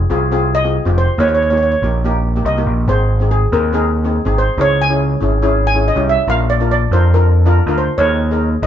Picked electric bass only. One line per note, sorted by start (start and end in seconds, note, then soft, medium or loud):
0.11 0.76 C2 medium
0.86 1.05 F1 medium
1.18 1.74 D#2 loud
1.82 2.38 A#1 medium
2.45 2.65 C2 medium
2.66 2.86 A#1 medium
2.88 3.44 G#1 medium
3.52 4.17 D#2 medium
4.26 4.45 G#1 medium
4.58 5.14 C#2 loud
5.22 5.87 G#1 medium
5.96 6.15 C2 medium
6.28 6.84 A#1 loud
6.91 7.57 F2 medium
7.67 7.86 D2 medium
7.99 8.55 D#2 loud
8.62 8.67 A#1 medium